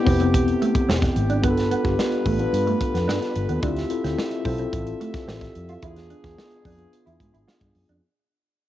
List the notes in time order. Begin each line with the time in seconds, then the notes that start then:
Already playing: C3 A3 B3 C4 E4 G4
0.05 F1 B3 C4 E4 G4, kick, open hi-hat
0.20 C4, closed hi-hat
0.34 E1, kick, closed hi-hat
0.48 closed hi-hat
0.62 A3, closed hi-hat
0.75 kick, closed hi-hat
0.89 E1 C4, snare
1.02 muted clean electric guitar stroke, kick, snare, closed hi-hat
1.16 G#1, closed hi-hat
1.30 D4, closed hi-hat
1.42 G1 G3 B3 D4 F4 G#4 A4 B4, kick, closed hi-hat
1.50 A4
1.57 muted clean electric guitar stroke, snare, closed hi-hat
1.71 B3, closed hi-hat
1.84 G1 B3 D4 F4 G4, kick, snare, closed hi-hat
1.99 snare
2.12 closed hi-hat
2.26 A1 A3, kick, open hi-hat
2.39 B3 D4 F4 B4, closed hi-hat
2.53 G2, closed hi-hat
2.67 A3, closed hi-hat
2.81 muted clean electric guitar stroke, kick, closed hi-hat
2.94 F2 B3, snare, closed hi-hat
3.08 G2 D4, snare
3.22 muted clean electric guitar stroke, snare, closed hi-hat
3.36 G1, closed hi-hat
3.49 D#2 B3, closed hi-hat
3.62 D2 D3 C4 D4 E4 F4 G4 E5, kick, closed hi-hat
3.77 snare, closed hi-hat
3.90 C4 E4 F4 A4, muted clean electric guitar stroke, closed hi-hat
4.04 D2 C4, snare, closed hi-hat
4.18 muted clean electric guitar stroke, snare
4.31 closed hi-hat
4.45 B1 C4 E4 F4 A4, kick, open hi-hat
4.58 C4, closed hi-hat
4.73 A1, kick, closed hi-hat
4.87 closed hi-hat
5.01 A3, closed hi-hat
5.14 kick, snare, closed hi-hat
5.28 A1 C4, snare
5.41 muted clean electric guitar stroke, kick, snare, closed hi-hat
5.55 F2, closed hi-hat
5.69 F4, closed hi-hat
5.82 E2 E3 B3 D4 E4 F4 G#4, kick, closed hi-hat
5.96 muted clean electric guitar stroke, snare, closed hi-hat
6.10 D4, closed hi-hat
6.23 E2 B3 D4 F4 G#4, kick, snare, closed hi-hat
6.38 snare
6.51 closed hi-hat
6.65 F2 D4, kick, open hi-hat
6.78 B3 D4 F4 G#4, closed hi-hat
6.93 closed hi-hat
7.06 E2 E4, closed hi-hat
7.20 G#2, muted clean electric guitar stroke, kick, closed hi-hat
7.34 G#1 E4, closed hi-hat
7.48 F4, snare
7.61 G2, muted clean electric guitar stroke, kick, closed hi-hat
7.75 F#2, open hi-hat
7.89 F2 D4, closed hi-hat